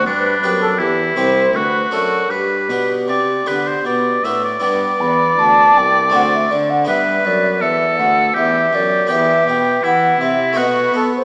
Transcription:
X:1
M:3/4
L:1/16
Q:1/4=81
K:G
V:1 name="Flute"
B3 A G2 c2 B2 A2 | G8- G2 z2 | g2 b2 a2 g2 f e d f | e2 d2 e2 f2 e2 d2 |
e2 g2 f2 e2 _e B A c |]
V:2 name="Oboe"
D4 E4 F4 | B4 d2 B c d2 e d | d12 | B4 A4 G4 |
G4 E4 F2 z2 |]
V:3 name="Harpsichord"
z2 [B,G]2 z2 [CG]2 z2 [A,D]2 | z2 [B,D]4 [B,D]4 [B,D]2 | [B,D]8 [A,CD]4 | [B,D]12 |
[B,G]8 [A,B,F]4 |]
V:4 name="Harpsichord" clef=bass
G,,2 F,,2 E,,2 C,,2 D,,2 F,,2 | G,,2 B,,2 C,2 D,2 B,,2 A,,2 | G,,2 E,,2 D,,2 C,,2 D,,2 D,2 | G,,2 F,,2 E,,2 D,,2 E,,2 F,,2 |
E,,2 B,,2 E,2 C,2 B,,2 B,2 |]
V:5 name="Cello" clef=bass
G,,2 F,,2 E,,2 C,,2 D,,2 F,,2 | G,,2 B,,2 C,2 D,2 B,,2 A,,2 | G,,2 E,,2 D,,2 C,,2 D,,2 D,2 | G,,2 F,,2 E,,2 D,,2 E,,2 F,,2 |
E,,2 B,,2 E,2 C,2 B,,2 B,2 |]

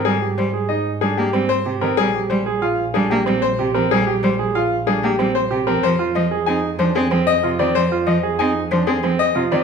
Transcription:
X:1
M:6/4
L:1/8
Q:1/4=187
K:Bbmix
V:1 name="Grand piano"
A z c z e z A G z c z B | A z c z f z A G z c z B | A z c z f z A G z c z B | c z e z a z c A z e z d |
c z e z a z c A z e z d |]
V:2 name="Grand piano"
z G z A E z D z C z G C | z G z A F z D z C z G C | z G z A F z D z C z G C | z F z A E z D z C z F C |
z F z A E z D z C z F C |]
V:3 name="Cello" clef=bass
G, z G, z3 G, B, G, z C, E, | G, z G, z3 G, B, G, z C, F, | G, z G, z3 G, B, G, z C, F, | F, z F, z C z F, C F, z C, E, |
F, z F, z C z F, C F, z C, E, |]
V:4 name="Double bass" clef=bass
A,,12 | B,,,12- | B,,,12 | F,,12- |
F,,12 |]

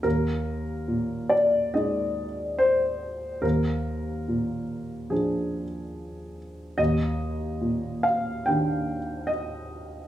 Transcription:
X:1
M:4/4
L:1/8
Q:1/4=71
K:Ablyd
V:1 name="Grand piano"
B3 d e2 c2 | B4 A3 z | e3 f g2 e2 |]
V:2 name="Grand piano" clef=bass
E,,2 B,,2 [A,EA]4 | E,,2 B,,2 [F,D]4 | E,,2 B,,2 [E,DG]4 |]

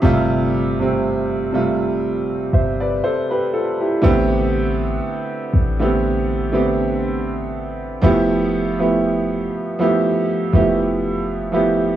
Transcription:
X:1
M:4/4
L:1/16
Q:"Swing 16ths" 1/4=60
K:Am
V:1 name="Grand piano"
z8 z2 [ce] [Bd] [Ac] [GB] [FA] [EG]- | [EG] z12 z3 | z16 |]
V:2 name="Grand piano"
[C,G,A,F]3 [C,G,A,C]3 [C,G,A,F]3 z6 z | [D,A,B,CG]6 z [D,A,B,CG]3 [D,A,B,CG]4- [D,A,B,CG] z | [F,A,B,EG]3 [F,A,B,EG]3 z [F,A,B,EG]3 [F,A,B,EG]3 z [F,A,B,EG]2 |]
V:3 name="808-style bass" clef=bass
G,,,8- G,,,2 G,,,2 z4 | A,,,4 z2 A,,,8- A,,,2 | F,,,6 z4 F,,,6 |]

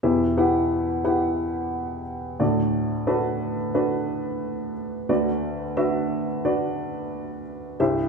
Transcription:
X:1
M:4/4
L:1/8
Q:1/4=89
K:Em
V:1 name="Upright piano"
[EGBe] [EGBf] z [EGBf]3 z [DFAd]- | [DFAd] [DFAB] z [DFAB]3 z [DFBd]- | [DFBd] [DFBe] z [DFBd]3 z [EGce] |]
V:2 name="Upright piano" clef=bass
[E,,B,,]6- [E,,B,,] [D,,A,,]- | [D,,A,,]6- [D,,A,,] [D,,D,]- | [D,,D,]6- [D,,D,] [C,,G,,] |]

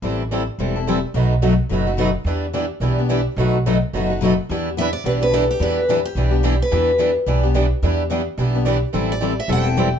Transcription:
X:1
M:4/4
L:1/8
Q:"Swing" 1/4=216
K:Bphr
V:1 name="Steel-string acoustic guitar"
z8 | z8 | z8 | z8 |
[K:Em] z2 e d B B A G | B2 A G4 B- | B3 z4 z | z8 |
z d2 e g4 |]
V:2 name="Steel-string acoustic guitar"
[E,G,CEA] z [E,G,CEA] z [E,G,CEA] z [E,G,CEA] z | [B,,F,A,^DFB] z [B,,F,A,DFB] z [B,,F,A,DFB] z [B,,F,A,DFB] z | [E,G,DEB] z [E,G,DEB] z [E,G,DEB] z [E,G,DEB] z | [B,,F,A,^DFB] z [B,,F,A,DFB] z [B,,F,A,DFB] z [B,,F,A,DFB] z |
[K:Em] [E,G,DEB] z [E,G,DEB] z [E,G,DEB] z [E,G,DEB] z | [E,G,DEB] z [E,G,DEB] z [E,G,DEB] z [E,G,DEB] z | [E,G,DEB] z [E,G,DEB] z [E,G,DEB] z [E,G,DEB] z | [E,G,DEB] z [E,G,DEB] z [E,G,DEB] z [E,G,DEB] z |
[E,G,CEA] z [E,G,CEA] z [E,G,CEA] z [E,G,CEA] z |]
V:3 name="Steel-string acoustic guitar"
[E,G,CEA] z [E,G,CEA] z [E,G,CEA] [CEA] [E,G,CEA] z | [B,,F,A,^DF] z [B,,F,A,DF] z [B,,F,A,DF] [A,DF] [B,,F,A,DF] z | [E,B,DG] z [E,B,DG] z [E,B,DG] [B,DG] [E,B,DG] z | [B,,F,A,^DF] z [B,,F,A,DF] z [B,,F,A,DF] [A,DF] [B,,F,A,DF] z |
[K:Em] [E,B,DG] z [E,B,DG] z [E,B,DG] [B,DG] [E,B,DG] z | [E,B,DG] z [E,B,DG] z [E,B,DG] [B,DG] [E,B,DG] z | [E,B,DG] z [E,B,DG] z [E,B,DG] [B,DG] [E,B,DG] z | [E,B,DG] z [E,B,DG] z [E,B,DG] [B,DG] [E,B,DG] z |
[E,G,CEA] z [E,G,CEA] z [E,G,CEA] [CEA] [E,G,CEA] z |]
V:4 name="Upright bass" clef=bass
A,,,4 E,,,4 | B,,,4 F,,,4 | E,,4 B,,,4 | B,,,4 F,,,4 |
[K:Em] E,,4 B,,,4 | E,,4 B,,,4 | E,,4 B,,,4 | E,,4 B,,,4 |
A,,,4 E,,,4 |]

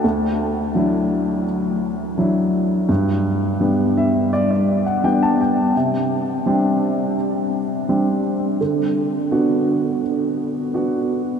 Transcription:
X:1
M:4/4
L:1/16
Q:1/4=84
K:Dmix
V:1 name="Upright piano"
z16 | z6 e2 d d2 f g a g2 | z16 | z16 |]
V:2 name="Upright piano"
D,,4 [F,DE]4 z4 [F,DE]4 | G,,4 [G,B,D]4 z4 [G,B,D]4 | C,4 [G,CD]4 z4 [G,CD]4 | D,4 [B,DF]4 z4 [B,DF]4 |]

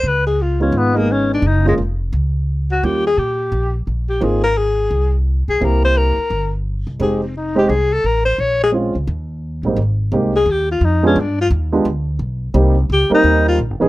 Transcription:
X:1
M:4/4
L:1/8
Q:"Swing" 1/4=173
K:Ab
V:1 name="Alto saxophone"
_c A F D _C B, D =D | E A, z4 z _G | G A G3 z2 G | A B A3 z2 A |
B c B3 z3 | A C E G A =A B c | d A z6 | z3 A G F E D |
=D F z6 | z2 G E2 F z2 |]
V:2 name="Upright piano"
z3 [A,_CEF]2 [A,CEA]3 | z [A,B,DF] z6 | [G,B,DF] z6 z | [B,CEF] z6 z |
[B,C=EG]3 z4 z | [A,CEG] z2 [A,CEG] z4 | z2 [A,CDF] z4 [A,,G,B,CE] | z2 [A,B,CEG] z4 [A,=B,=DFA] |
z3 [A,=B,=DFG] z4 | [G,B,CEG] z2 [G,B,CEB]3 z [=E,=B,D_EA] |]
V:3 name="Upright bass" clef=bass
D,,4 A,,,4 | _G,,,2 F,,,2 D,,4 | E,,2 B,,2 B,,,2 B,,,2 | A,,,4 C,,3 =B,,, |
C,,3 z G,,,3 C,, | F,,,4 C,,2 =A,,,2 | B,,,3 D,, E,,3 B,,, | A,,,2 C,,2 E,,2 F,,2 |
G,,2 E,,2 =D,,2 =B,,,2 | C,,2 D,, z E,,2 (3B,,, G,,, E,,, |]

